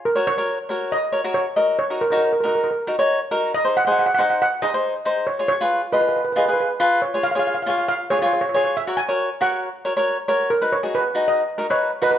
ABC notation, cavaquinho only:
X:1
M:4/4
L:1/16
Q:"Swing 16ths" 1/4=138
K:F#
V:1 name="Cavaquinho"
z [FAc] z [FAc]2 z [FAc]2 z2 [FAc] [FAc]2 z [FAd]2 | z [DFA] z [DFc]2 z [DFA]2 z2 [DFA] [DFc]2 z [DFA]2 | z [DG^B] z [DGB]2 z [DGB]2 z2 [DGB] [DGB]2 z [DGB]2 | z [EGc] z [EGB]2 z [EGd]2 z2 [EGd] [EGB]2 z [EGB]2 |
z [EGc] z [EGc]2 z [EGc]2 z2 [EGc] [EGc]2 z [EGc]2 | z [FAc] z [FAc]2 z [FAc]2 z2 [FAc] [FAc]2 z [FAc]2 | z [DFB] z [DFG]2 z [DFG]2 z2 [DFA] [DFB]2 z [DFB]2 |]